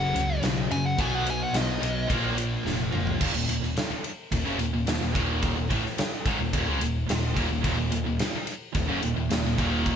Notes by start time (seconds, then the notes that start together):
Already playing: F#1 F#2 C#3 F#3 F#5
0.15 C#2 F#2 C#3, ride
0.43 B1 F#2 C#3, snare, ride
0.71 F#2 C#3 G#5, ride
0.86 F#5
0.98 B1 B2 F#3 B3 G#5, kick, ride
1.15 F#5
1.27 B2 F#3 G#5, ride
1.43 F#5
1.53 B1 B2 F#3 D#5, snare, ride
1.81 B1 B2 F#3 B3, ride
2.10 A#1 A#2 F3 A#3, kick, ride
2.38 A#2 F3, ride
2.65 F1 A#2 F3, snare
2.92 F1 A#2 F3 A#3, mid tom
3.07 floor tom
3.21 D#1 D#2 A#2, kick, crash
3.34 D#1 D#2 A#2
3.48 D#1 D#2 A#2, ride
3.61 D#1 D#2 A#2, snare
3.76 muted picked electric bass stroke, muted distorted electric guitar stroke, snare, ride
3.90 muted picked electric bass stroke, muted distorted electric guitar stroke
4.04 ride
4.31 D#1 D#2 A#2, kick, ride
4.46 F#1 F#2 C#3
4.59 D#1 D#2 A#2, ride
4.73 D#1 D#2 A#2
4.87 D#1 D#2 A#2, snare, ride
5.01 D#1 D#2 A#2, snare
5.15 D#1 D#2 A#2 D#3, kick, ride
5.43 kick, ride
5.56 D#1 D#2 A#2
5.69 A1 A2 E3, kick, ride
5.85 muted distorted electric guitar stroke, muted picked electric bass stroke, snare
5.98 muted picked electric bass stroke, muted distorted electric guitar stroke, snare, ride
6.25 G#1 G#2 D#3, kick, ride
6.39 D#1 D#2 A#2
6.53 D#1 D#2 A#2, kick, ride
6.66 C#2 C#3
6.70 G#3
6.79 D#1, ride
6.84 D#2 A#2
7.07 D#1 D#2, snare, ride
7.11 D#2 A#2
7.36 D#1 D#2 A#2, kick, ride
7.51 D#1 D#2 A#2
7.61 D#1 D#2 A#2, kick, ride
7.65 D#2 A#2
7.78 D#1 D#2 A#2
7.92 D#1 D#2 A#2, ride
8.06 D#1 D#2 A#2
8.17 muted distorted electric guitar stroke, muted picked electric bass stroke, snare, ride
8.21 muted distorted electric guitar stroke
8.32 muted distorted electric guitar stroke, muted picked electric bass stroke
8.36 muted distorted electric guitar stroke
8.47 ride
8.75 D#1 D#2 A#2, kick, ride
8.89 F#1 F#2 C#3
9.03 D#1 D#2 A#2, ride
9.15 D#1 D#2 A#2
9.30 D#1 D#2 A#2, snare, ride
9.45 D#1 D#2 A#2, snare
9.58 D#1 D#2 A#2 D#3, kick, ride
9.86 kick, ride